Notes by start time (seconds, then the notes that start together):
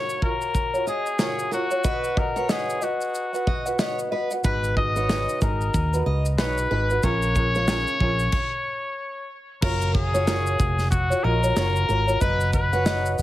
Already playing: F4 F#4 A#4 C#5
0.09 shaker
0.22 F4 F#4 A#4 C#5, kick
0.41 shaker
0.55 kick, shaker
0.73 F4 F#4 C#5, shaker
0.87 G#4 D#5, shaker
1.06 shaker
1.19 F4 F#4 A#4 C#5, snare, shaker
1.39 shaker
1.51 F4 F#4 A#4 C#5, shaker
1.71 F4 F#4 C#5, shaker
1.84 F#4 B4 D#5 F#5, kick, shaker
2.04 shaker
2.16 F#4 A#4 B4 D#5 F#5, kick
2.35 F#4 B4 C#5 F#5, shaker
2.49 F#4 G#4 B4 D#5 F#5, snare, shaker
2.69 shaker
2.81 F#4 B4 D#5 F#5, shaker
3.01 shaker
3.15 shaker
3.33 F#4 B4 F#5, shaker
3.47 D#5, kick
3.66 F#4 B4 F#5, shaker
3.79 F#4 B4 C#5 D#5 F#5, snare, shaker
3.99 shaker
4.11 F#4 B4 D#5 F#5
4.31 F#4 B4 F#5, shaker
4.44 G#1 D#4 F#4 G#4 B4, kick, shaker
4.64 shaker
4.76 D#4 F#4 G#4 B4 D#5, kick
4.96 D#4 F#4 B4 C#5, shaker
5.09 D#4 F#4 G#4 B4, snare, shaker
5.29 shaker
5.41 G#1 D#4 F#4 G#4 A#4, kick, shaker
5.61 shaker
5.74 D#2, kick, shaker
5.94 D#4 F#4 B4, shaker
6.06 C#2 D#5
6.26 shaker
6.38 B1 D#4 F#4 G#4 B4 C#5, snare, shaker
6.58 shaker
6.71 G#1 D#4 F#4 G#4 B4
6.90 D#4 F#4 B4, shaker
7.03 A#1 C#4 F4 G#4 A#4 C#5, kick, shaker
7.22 shaker
7.35 C#4 F4 G#4 A#4, kick, shaker
7.55 C#4 F4 A#4 C#5, shaker
7.68 C#4 F4 G#4 A#4, snare, shaker
7.87 shaker
8.00 A#1 C#4 F4 G#4 A#4, kick
8.19 shaker
8.32 kick, crash
9.62 F#1 F4 F#4 A#4 C#5, kick, crash
9.82 shaker
9.94 G#4, kick
10.14 F4 F#4 C#5, shaker
10.26 F4 F#4 A#4 C#5, snare, shaker
10.47 shaker
10.59 F1, kick, shaker
10.79 snare, shaker
10.90 F#4, kick, shaker
11.10 F4 F#4 C#5, shaker
11.23 A#1 F4 F#4 A#4 C#5 D#5
11.43 F4 F#4 C#5, shaker
11.56 F#1 F4 F#4 A#4 C#5, snare, shaker
11.76 shaker
11.88 G#1 F4 F#4 A#4 C#5, shaker
12.07 F4 F#4 C#5, shaker
12.20 F#1 F#4 B4 D#5 F#5, kick, shaker
12.40 shaker
12.53 B4, kick, shaker
12.73 F#4 B4 C#5 F#5, shaker
12.86 F#4 B4 D#5 F#5, snare, shaker
13.06 shaker
13.18 F#1, shaker